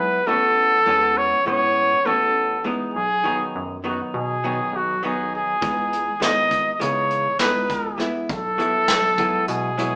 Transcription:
0.00 0.19 F#3 medium
0.00 0.19 G#3 medium
0.00 0.19 B3 medium
0.00 0.19 E4 medium
0.00 0.29 B4 medium
0.27 0.74 A1 medium
0.27 0.78 E3 medium
0.27 0.78 A3 medium
0.27 0.78 B3 medium
0.27 0.79 C#4 medium
0.27 1.19 A4 medium
0.86 1.33 E2 loud
0.86 1.37 E3 medium
0.86 1.37 G#3 medium
0.86 1.38 B3 medium
0.86 1.38 C#4 medium
1.17 1.47 C#5 medium
1.46 1.93 A2 medium
1.46 1.97 E3 medium
1.46 1.97 G#3 medium
1.46 1.97 B3 medium
1.46 1.98 C#4 medium
1.46 2.07 C#5 medium
2.05 2.76 A1 medium
2.05 2.56 E3 medium
2.05 2.56 A3 medium
2.05 2.57 B3 medium
2.05 2.57 C#4 medium
2.05 2.68 A4 medium
2.64 2.95 E3 medium
2.64 2.95 G#3 medium
2.64 2.95 B3 medium
2.64 2.96 D#4 medium
2.94 3.42 B1 medium
2.94 3.50 G#4 medium
3.24 3.75 D#3 medium
3.24 3.75 F#3 medium
3.24 3.75 B3 medium
3.24 3.76 D#4 medium
3.55 4.02 F#2 medium
3.84 4.35 D#3 medium
3.84 4.35 F#3 soft
3.84 4.35 B3 medium
3.84 4.35 D#4 medium
3.88 4.01 F#4 medium
4.14 4.60 B2 medium
4.14 4.78 G#4 medium
4.44 4.94 D#3 medium
4.44 4.95 F#3 medium
4.44 4.95 B3 medium
4.44 4.95 D#4 medium
4.73 5.42 B1 medium
4.73 5.04 F#4 medium
5.03 5.53 D#3 medium
5.03 5.54 F#3 medium
5.03 5.54 B3 medium
5.03 5.54 D#4 medium
5.03 5.32 G#4 medium
5.36 6.19 G#4 medium
5.61 6.09 C#2 medium
5.61 6.12 E3 medium
5.61 6.13 G#3 medium
5.61 6.13 B3 medium
5.61 6.13 D#4 medium
5.61 kick medium
5.61 closed hi-hat medium
5.93 closed hi-hat medium
6.20 6.68 G#1 loud
6.20 6.71 E3 medium
6.20 6.72 G#3 medium
6.20 6.72 B3 medium
6.20 6.72 D#4 medium
6.20 6.73 D#5 medium
6.20 snare medium
6.20 closed hi-hat medium
6.51 kick medium
6.51 closed hi-hat medium
6.73 6.83 D#5 medium
6.80 7.28 C#3 medium
6.80 7.31 E3 medium
6.80 7.31 G#3 medium
6.80 7.31 B3 soft
6.80 7.32 D#4 medium
6.80 7.40 C#5 medium
6.80 closed hi-hat medium
7.10 closed hi-hat medium
7.39 8.10 C#2 medium
7.39 7.90 E3 medium
7.39 7.91 G#3 medium
7.39 7.91 B3 medium
7.39 7.91 D#4 medium
7.39 7.98 B4 medium
7.39 snare medium
7.39 closed hi-hat medium
7.70 kick medium
7.70 closed hi-hat medium
7.98 8.29 E3 medium
7.98 8.29 G#3 medium
7.98 8.29 B3 medium
7.98 8.30 E4 medium
7.98 snare soft
7.98 closed hi-hat medium
8.29 8.76 B1 medium
8.29 9.45 A4 medium
8.29 kick medium
8.29 closed hi-hat medium
8.58 9.09 E3 medium
8.58 9.09 F#3 medium
8.58 9.09 B3 medium
8.58 9.10 E4 medium
8.58 closed hi-hat soft
8.88 9.36 B1 medium
8.88 snare medium
8.88 closed hi-hat medium
9.18 9.69 F#3 medium
9.18 9.69 G#3 medium
9.18 9.69 B3 medium
9.18 9.69 E4 medium
9.18 kick medium
9.18 closed hi-hat medium
9.48 9.95 B2 loud
9.48 9.95 G#4 medium
9.48 closed hi-hat medium
9.78 9.95 F#3 medium
9.78 9.95 G#3 medium
9.78 9.95 B3 medium
9.78 9.95 E4 medium
9.78 closed hi-hat medium

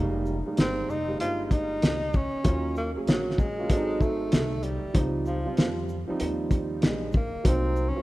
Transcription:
0.00 0.44 F1 loud
0.00 0.35 G3 medium
0.00 0.35 G#3 medium
0.00 0.36 A#3 medium
0.00 0.36 D#4 medium
0.26 shaker soft
0.45 0.94 G3 medium
0.45 0.94 G#3 medium
0.45 0.95 A#3 medium
0.45 0.95 D#4 medium
0.45 muted upright bass stroke soft
0.57 0.87 G1 medium
0.57 0.91 C4 loud
0.57 snare loud
0.57 closed hi-hat medium
0.89 1.19 F1 medium
0.89 1.20 D#4 loud
0.89 shaker soft
1.08 2.08 G3 medium
1.08 2.08 G#3 medium
1.08 2.09 A#3 medium
1.08 2.09 D#4 medium
1.20 1.80 G1 medium
1.20 1.45 F4 loud
1.20 closed hi-hat medium
1.45 1.53 F4 medium
1.51 2.17 D#4 loud
1.51 kick medium
1.51 closed hi-hat medium
1.51 shaker soft
1.82 2.31 C#2 medium
1.82 snare loud
1.82 closed hi-hat medium
2.13 2.77 C#4 loud
2.13 kick loud
2.13 shaker soft
2.43 2.94 D#2 loud
2.43 2.85 F#3 medium
2.43 2.85 A#3 medium
2.43 2.86 C#4 medium
2.43 2.86 F4 medium
2.43 kick loud
2.43 closed hi-hat medium
2.76 2.91 A#3 medium
2.76 shaker medium
2.95 3.44 F#3 medium
2.95 3.44 A#3 medium
2.95 3.44 C#4 medium
2.95 3.45 G#4 medium
2.95 muted upright bass stroke soft
3.07 3.70 A#1 medium
3.07 3.41 F#3 medium
3.07 snare loud
3.07 closed hi-hat medium
3.31 snare soft
3.38 4.03 G#3 loud
3.38 kick medium
3.38 shaker soft
3.58 3.67 F#3 medium
3.58 3.70 A#3 medium
3.58 3.70 C#4 medium
3.58 3.70 F4 medium
3.69 4.29 G#1 loud
3.69 4.75 F#3 medium
3.69 4.75 C4 medium
3.69 3.79 D4 medium
3.69 4.75 A4 medium
3.69 kick loud
3.69 closed hi-hat medium
3.77 4.79 D#4 medium
4.01 4.65 A3 medium
4.01 kick medium
4.01 shaker soft
4.32 4.82 C2 loud
4.32 snare loud
4.32 closed hi-hat medium
4.63 5.00 G3 medium
4.63 closed hi-hat soft
4.63 shaker soft
4.84 muted upright bass stroke soft
4.93 5.44 C#2 loud
4.93 5.35 F3 medium
4.93 5.35 G3 medium
4.93 5.36 C4 medium
4.93 5.36 D#4 medium
4.93 kick loud
4.93 closed hi-hat medium
5.26 5.85 F3 medium
5.26 shaker medium
5.45 5.94 F3 medium
5.45 5.94 G3 medium
5.45 5.94 C4 medium
5.45 5.95 F4 medium
5.45 muted upright bass stroke soft
5.57 6.07 F2 loud
5.57 snare loud
5.57 closed hi-hat medium
5.89 shaker medium
6.08 7.08 F3 medium
6.08 7.09 G3 medium
6.08 7.09 C4 medium
6.08 7.09 D#4 medium
6.08 muted upright bass stroke soft
6.20 6.80 D#2 loud
6.20 closed hi-hat medium
6.51 kick medium
6.51 closed hi-hat medium
6.51 shaker medium
6.82 7.32 A#1 medium
6.82 7.13 G#3 medium
6.82 snare loud
6.82 closed hi-hat medium
7.12 kick loud
7.12 shaker soft
7.16 7.48 A#3 medium
7.35 muted upright bass stroke soft
7.44 7.94 C2 loud
7.44 7.85 F#3 medium
7.44 7.85 A#3 medium
7.44 7.86 C4 medium
7.44 7.90 C4 loud
7.44 7.86 D#4 medium
7.44 kick loud
7.44 closed hi-hat loud
7.76 shaker medium
7.89 8.02 C#4 medium
7.95 8.02 F#3 medium
7.95 8.02 A#3 medium
7.95 8.02 C4 medium
7.95 8.02 F4 medium

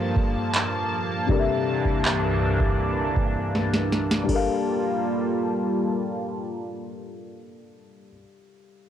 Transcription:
0.00 1.26 G2 medium
0.00 1.26 F3 medium
0.00 1.24 G3 medium
0.00 4.25 A#3 medium
0.00 1.25 D4 medium
0.00 1.25 A4 medium
0.00 1.26 A#4 medium
0.00 1.27 F5 medium
0.00 4.25 A5 medium
0.16 kick medium
0.54 clap loud
0.54 closed hi-hat medium
1.27 4.26 C2 medium
1.27 4.26 G2 medium
1.27 4.24 C3 medium
1.27 4.26 E3 medium
1.27 4.22 G3 medium
1.27 4.26 D4 medium
1.27 4.25 D4 medium
1.27 4.26 A4 medium
1.27 kick loud
1.32 4.26 A#4 medium
1.32 1.37 D5 medium
1.39 4.30 E5 medium
1.85 kick medium
2.05 clap loud
2.60 kick medium
3.16 kick medium
3.55 snare medium
3.74 snare medium
3.93 snare medium
4.11 snare medium
4.24 8.09 G3 medium
4.24 8.12 D4 medium
4.29 8.05 G3 medium
4.29 8.05 A#3 medium
4.29 8.05 F4 medium
4.29 8.15 A4 medium
4.29 8.05 A5 medium
4.29 kick medium
4.29 crash medium
4.33 8.18 A#4 medium
4.33 8.21 F5 medium

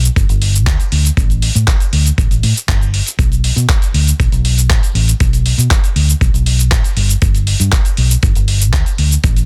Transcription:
0.04 closed hi-hat soft
0.04 shaker medium
0.16 0.25 G1 loud
0.16 kick loud
0.16 closed hi-hat medium
0.16 shaker medium
0.29 0.67 G1 medium
0.29 closed hi-hat soft
0.29 shaker soft
0.42 open hi-hat loud
0.55 closed hi-hat soft
0.55 shaker medium
0.67 0.75 D2 loud
0.67 kick loud
0.67 clap loud
0.67 closed hi-hat medium
0.67 shaker medium
0.80 closed hi-hat soft
0.80 shaker soft
0.92 1.09 D2 medium
0.92 open hi-hat loud
1.05 closed hi-hat soft
1.05 shaker medium
1.17 1.48 A1 loud
1.17 kick loud
1.17 closed hi-hat medium
1.17 shaker medium
1.30 closed hi-hat soft
1.30 shaker soft
1.42 open hi-hat loud
1.55 1.64 A2 loud
1.55 closed hi-hat soft
1.55 shaker medium
1.68 kick loud
1.68 clap loud
1.68 closed hi-hat medium
1.68 shaker medium
1.80 closed hi-hat soft
1.80 shaker soft
1.93 2.10 D2 medium
1.93 open hi-hat loud
2.06 closed hi-hat soft
2.06 shaker medium
2.18 2.27 A1 loud
2.18 kick loud
2.18 closed hi-hat medium
2.18 shaker medium
2.31 2.42 A1 medium
2.31 closed hi-hat soft
2.31 shaker soft
2.43 2.52 A2 medium
2.43 open hi-hat loud
2.56 closed hi-hat soft
2.56 shaker medium
2.68 3.00 G1 loud
2.68 kick loud
2.68 clap loud
2.68 closed hi-hat medium
2.68 shaker medium
2.81 closed hi-hat soft
2.81 shaker soft
2.94 open hi-hat medium
3.07 closed hi-hat soft
3.07 shaker medium
3.19 3.50 B1 loud
3.19 kick loud
3.19 closed hi-hat medium
3.19 shaker medium
3.32 closed hi-hat soft
3.32 shaker soft
3.44 open hi-hat loud
3.56 3.65 B2 loud
3.56 closed hi-hat soft
3.56 shaker medium
3.69 kick loud
3.69 clap loud
3.69 closed hi-hat medium
3.69 shaker medium
3.82 closed hi-hat soft
3.82 shaker soft
3.94 4.11 D2 medium
3.94 open hi-hat medium
4.07 closed hi-hat soft
4.07 shaker medium
4.20 4.28 B1 loud
4.20 kick loud
4.20 closed hi-hat medium
4.20 shaker medium
4.32 4.70 B1 medium
4.32 closed hi-hat soft
4.32 shaker soft
4.45 open hi-hat loud
4.58 closed hi-hat soft
4.58 shaker medium
4.70 4.79 A1 loud
4.70 kick loud
4.70 clap loud
4.70 closed hi-hat medium
4.70 shaker medium
4.83 closed hi-hat soft
4.83 shaker soft
4.95 5.12 A1 medium
4.95 open hi-hat medium
5.08 closed hi-hat soft
5.08 shaker medium
5.20 5.52 B1 loud
5.20 kick loud
5.20 closed hi-hat medium
5.20 shaker medium
5.33 closed hi-hat soft
5.33 shaker soft
5.46 open hi-hat loud
5.58 5.67 B2 loud
5.58 closed hi-hat soft
5.58 shaker medium
5.71 kick loud
5.71 clap loud
5.71 closed hi-hat medium
5.71 shaker medium
5.84 closed hi-hat soft
5.84 shaker soft
5.96 6.13 D2 medium
5.96 open hi-hat medium
6.09 closed hi-hat soft
6.09 shaker medium
6.21 6.30 B1 loud
6.21 kick loud
6.21 closed hi-hat medium
6.21 shaker medium
6.34 6.72 B1 medium
6.34 closed hi-hat soft
6.34 shaker soft
6.46 open hi-hat loud
6.59 closed hi-hat soft
6.59 shaker medium
6.72 6.80 A1 loud
6.72 kick loud
6.72 clap loud
6.72 closed hi-hat medium
6.72 shaker medium
6.84 closed hi-hat soft
6.84 shaker soft
6.97 7.14 G1 medium
6.97 open hi-hat medium
7.09 closed hi-hat soft
7.09 shaker medium
7.22 7.53 G1 loud
7.22 kick loud
7.22 closed hi-hat medium
7.22 shaker medium
7.35 closed hi-hat soft
7.35 shaker soft
7.47 open hi-hat loud
7.60 7.68 G2 loud
7.60 closed hi-hat soft
7.60 shaker medium
7.72 kick loud
7.72 clap loud
7.72 closed hi-hat medium
7.72 shaker medium
7.85 closed hi-hat soft
7.85 shaker soft
7.97 8.15 B1 medium
7.97 open hi-hat medium
8.10 closed hi-hat soft
8.10 shaker medium
8.23 8.32 G1 loud
8.23 kick loud
8.23 closed hi-hat medium
8.23 shaker medium
8.35 8.73 G1 medium
8.35 closed hi-hat soft
8.35 shaker soft
8.48 open hi-hat loud
8.61 closed hi-hat soft
8.61 shaker medium
8.73 8.82 D2 loud
8.73 kick loud
8.73 clap loud
8.73 closed hi-hat medium
8.73 shaker medium
8.86 closed hi-hat soft
8.86 shaker soft
8.98 9.16 D2 medium
8.98 open hi-hat medium
9.11 closed hi-hat soft
9.11 shaker medium
9.24 9.46 A1 loud
9.24 kick loud
9.24 closed hi-hat loud
9.24 shaker medium
9.36 closed hi-hat soft
9.36 shaker soft

